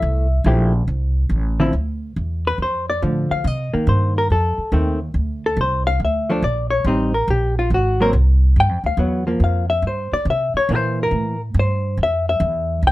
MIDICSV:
0, 0, Header, 1, 4, 480
1, 0, Start_track
1, 0, Key_signature, -1, "minor"
1, 0, Tempo, 426743
1, 33, Time_signature, 4, 2, 24, 8
1, 14531, End_track
2, 0, Start_track
2, 0, Title_t, "Hollow-body jazz guitar"
2, 0, Program_c, 0, 26
2, 0, Note_on_c, 0, 57, 66
2, 0, Note_on_c, 0, 64, 71
2, 0, Note_on_c, 0, 76, 92
2, 293, Note_off_c, 0, 57, 0
2, 298, Note_off_c, 0, 64, 0
2, 477, Note_off_c, 0, 76, 0
2, 518, Note_on_c, 0, 53, 62
2, 521, Note_on_c, 0, 64, 62
2, 526, Note_on_c, 0, 57, 59
2, 533, Note_on_c, 0, 67, 64
2, 805, Note_off_c, 0, 53, 0
2, 806, Note_off_c, 0, 64, 0
2, 809, Note_off_c, 0, 57, 0
2, 812, Note_off_c, 0, 67, 0
2, 1796, Note_on_c, 0, 50, 70
2, 1798, Note_on_c, 0, 53, 72
2, 1808, Note_on_c, 0, 60, 75
2, 1812, Note_on_c, 0, 64, 86
2, 1936, Note_off_c, 0, 50, 0
2, 1937, Note_off_c, 0, 53, 0
2, 1942, Note_off_c, 0, 60, 0
2, 1944, Note_off_c, 0, 64, 0
2, 2782, Note_on_c, 0, 71, 95
2, 2921, Note_off_c, 0, 71, 0
2, 2951, Note_on_c, 0, 72, 78
2, 3244, Note_off_c, 0, 72, 0
2, 3257, Note_on_c, 0, 74, 96
2, 3398, Note_off_c, 0, 74, 0
2, 3401, Note_on_c, 0, 53, 54
2, 3402, Note_on_c, 0, 50, 52
2, 3727, Note_on_c, 0, 77, 98
2, 3876, Note_off_c, 0, 50, 0
2, 3876, Note_off_c, 0, 53, 0
2, 3906, Note_off_c, 0, 77, 0
2, 3906, Note_on_c, 0, 75, 74
2, 4201, Note_off_c, 0, 75, 0
2, 4201, Note_on_c, 0, 58, 61
2, 4202, Note_on_c, 0, 51, 56
2, 4374, Note_on_c, 0, 72, 72
2, 4675, Note_off_c, 0, 72, 0
2, 4703, Note_on_c, 0, 70, 90
2, 4803, Note_off_c, 0, 51, 0
2, 4803, Note_off_c, 0, 58, 0
2, 4841, Note_off_c, 0, 70, 0
2, 4857, Note_on_c, 0, 69, 81
2, 5291, Note_off_c, 0, 69, 0
2, 5314, Note_on_c, 0, 51, 57
2, 5321, Note_on_c, 0, 57, 61
2, 5326, Note_on_c, 0, 60, 59
2, 5602, Note_off_c, 0, 51, 0
2, 5605, Note_off_c, 0, 57, 0
2, 5608, Note_off_c, 0, 60, 0
2, 6143, Note_on_c, 0, 69, 82
2, 6281, Note_off_c, 0, 69, 0
2, 6308, Note_on_c, 0, 72, 88
2, 6596, Note_off_c, 0, 72, 0
2, 6601, Note_on_c, 0, 77, 109
2, 6750, Note_off_c, 0, 77, 0
2, 6800, Note_on_c, 0, 76, 76
2, 7081, Note_on_c, 0, 53, 81
2, 7088, Note_off_c, 0, 76, 0
2, 7090, Note_on_c, 0, 57, 77
2, 7103, Note_on_c, 0, 62, 79
2, 7219, Note_off_c, 0, 53, 0
2, 7223, Note_off_c, 0, 57, 0
2, 7229, Note_off_c, 0, 62, 0
2, 7243, Note_on_c, 0, 74, 95
2, 7537, Note_off_c, 0, 74, 0
2, 7542, Note_on_c, 0, 73, 95
2, 7726, Note_on_c, 0, 55, 67
2, 7727, Note_off_c, 0, 73, 0
2, 7727, Note_on_c, 0, 72, 83
2, 7731, Note_on_c, 0, 60, 66
2, 7736, Note_on_c, 0, 63, 64
2, 8008, Note_off_c, 0, 55, 0
2, 8010, Note_off_c, 0, 60, 0
2, 8013, Note_off_c, 0, 63, 0
2, 8031, Note_off_c, 0, 72, 0
2, 8035, Note_on_c, 0, 70, 82
2, 8187, Note_off_c, 0, 70, 0
2, 8216, Note_on_c, 0, 67, 81
2, 8516, Note_off_c, 0, 67, 0
2, 8536, Note_on_c, 0, 65, 84
2, 8677, Note_off_c, 0, 65, 0
2, 8709, Note_on_c, 0, 66, 75
2, 9003, Note_off_c, 0, 66, 0
2, 9004, Note_on_c, 0, 54, 72
2, 9018, Note_on_c, 0, 70, 100
2, 9022, Note_on_c, 0, 58, 78
2, 9022, Note_on_c, 0, 60, 77
2, 9105, Note_off_c, 0, 70, 0
2, 9140, Note_off_c, 0, 54, 0
2, 9149, Note_off_c, 0, 58, 0
2, 9149, Note_off_c, 0, 60, 0
2, 9674, Note_on_c, 0, 79, 88
2, 9965, Note_off_c, 0, 79, 0
2, 9970, Note_on_c, 0, 77, 85
2, 10111, Note_on_c, 0, 54, 55
2, 10112, Note_on_c, 0, 59, 61
2, 10114, Note_off_c, 0, 77, 0
2, 10400, Note_off_c, 0, 54, 0
2, 10401, Note_off_c, 0, 59, 0
2, 10425, Note_on_c, 0, 53, 59
2, 10434, Note_on_c, 0, 58, 56
2, 10616, Note_on_c, 0, 77, 84
2, 10844, Note_off_c, 0, 53, 0
2, 10848, Note_off_c, 0, 58, 0
2, 10903, Note_off_c, 0, 77, 0
2, 10908, Note_on_c, 0, 76, 96
2, 11063, Note_off_c, 0, 76, 0
2, 11103, Note_on_c, 0, 72, 74
2, 11399, Note_off_c, 0, 72, 0
2, 11400, Note_on_c, 0, 74, 97
2, 11549, Note_off_c, 0, 74, 0
2, 11587, Note_on_c, 0, 76, 98
2, 11881, Note_off_c, 0, 76, 0
2, 11888, Note_on_c, 0, 73, 96
2, 12033, Note_off_c, 0, 73, 0
2, 12037, Note_on_c, 0, 52, 53
2, 12043, Note_on_c, 0, 58, 64
2, 12055, Note_on_c, 0, 61, 65
2, 12094, Note_off_c, 0, 61, 0
2, 12094, Note_on_c, 0, 72, 75
2, 12375, Note_off_c, 0, 72, 0
2, 12407, Note_on_c, 0, 70, 89
2, 12771, Note_off_c, 0, 52, 0
2, 12774, Note_off_c, 0, 58, 0
2, 12828, Note_off_c, 0, 70, 0
2, 13042, Note_on_c, 0, 72, 88
2, 13464, Note_off_c, 0, 72, 0
2, 13532, Note_on_c, 0, 76, 94
2, 13814, Note_off_c, 0, 76, 0
2, 13826, Note_on_c, 0, 76, 91
2, 14403, Note_off_c, 0, 76, 0
2, 14478, Note_on_c, 0, 79, 99
2, 14531, Note_off_c, 0, 79, 0
2, 14531, End_track
3, 0, Start_track
3, 0, Title_t, "Upright bass"
3, 0, Program_c, 1, 32
3, 26, Note_on_c, 1, 36, 92
3, 494, Note_off_c, 1, 36, 0
3, 499, Note_on_c, 1, 34, 93
3, 971, Note_off_c, 1, 34, 0
3, 985, Note_on_c, 1, 36, 82
3, 1449, Note_off_c, 1, 36, 0
3, 1456, Note_on_c, 1, 33, 80
3, 1929, Note_off_c, 1, 33, 0
3, 1944, Note_on_c, 1, 38, 76
3, 2413, Note_off_c, 1, 38, 0
3, 2434, Note_on_c, 1, 40, 81
3, 2898, Note_off_c, 1, 40, 0
3, 2902, Note_on_c, 1, 41, 66
3, 3372, Note_off_c, 1, 41, 0
3, 3402, Note_on_c, 1, 45, 80
3, 3696, Note_off_c, 1, 45, 0
3, 3872, Note_on_c, 1, 48, 85
3, 4171, Note_off_c, 1, 48, 0
3, 4351, Note_on_c, 1, 43, 89
3, 4816, Note_off_c, 1, 43, 0
3, 4838, Note_on_c, 1, 41, 71
3, 5134, Note_off_c, 1, 41, 0
3, 5307, Note_on_c, 1, 39, 82
3, 5774, Note_off_c, 1, 39, 0
3, 5782, Note_on_c, 1, 38, 81
3, 6252, Note_off_c, 1, 38, 0
3, 6260, Note_on_c, 1, 36, 90
3, 6731, Note_off_c, 1, 36, 0
3, 6746, Note_on_c, 1, 38, 81
3, 7213, Note_off_c, 1, 38, 0
3, 7226, Note_on_c, 1, 34, 85
3, 7694, Note_off_c, 1, 34, 0
3, 7699, Note_on_c, 1, 33, 85
3, 8170, Note_off_c, 1, 33, 0
3, 8185, Note_on_c, 1, 34, 87
3, 8653, Note_off_c, 1, 34, 0
3, 8664, Note_on_c, 1, 32, 79
3, 9132, Note_off_c, 1, 32, 0
3, 9144, Note_on_c, 1, 36, 89
3, 9612, Note_off_c, 1, 36, 0
3, 9628, Note_on_c, 1, 43, 80
3, 9775, Note_off_c, 1, 43, 0
3, 9775, Note_on_c, 1, 41, 49
3, 9932, Note_off_c, 1, 41, 0
3, 9939, Note_on_c, 1, 38, 70
3, 10083, Note_off_c, 1, 38, 0
3, 10090, Note_on_c, 1, 40, 86
3, 10565, Note_off_c, 1, 40, 0
3, 10571, Note_on_c, 1, 41, 75
3, 11042, Note_off_c, 1, 41, 0
3, 11049, Note_on_c, 1, 43, 79
3, 11358, Note_off_c, 1, 43, 0
3, 11533, Note_on_c, 1, 48, 84
3, 11840, Note_off_c, 1, 48, 0
3, 12022, Note_on_c, 1, 46, 87
3, 12491, Note_off_c, 1, 46, 0
3, 12497, Note_on_c, 1, 45, 72
3, 12968, Note_off_c, 1, 45, 0
3, 12984, Note_on_c, 1, 43, 91
3, 13452, Note_off_c, 1, 43, 0
3, 13469, Note_on_c, 1, 41, 81
3, 13934, Note_off_c, 1, 41, 0
3, 13947, Note_on_c, 1, 40, 94
3, 14414, Note_off_c, 1, 40, 0
3, 14426, Note_on_c, 1, 36, 82
3, 14531, Note_off_c, 1, 36, 0
3, 14531, End_track
4, 0, Start_track
4, 0, Title_t, "Muted upright bass strokes"
4, 3719, Note_on_c, 9, 29, 37
4, 3831, Note_off_c, 9, 29, 0
4, 4206, Note_on_c, 9, 29, 40
4, 4319, Note_off_c, 9, 29, 0
4, 5149, Note_on_c, 9, 29, 35
4, 5261, Note_off_c, 9, 29, 0
4, 11383, Note_on_c, 9, 29, 39
4, 11495, Note_off_c, 9, 29, 0
4, 11854, Note_on_c, 9, 29, 38
4, 11967, Note_off_c, 9, 29, 0
4, 14531, End_track
0, 0, End_of_file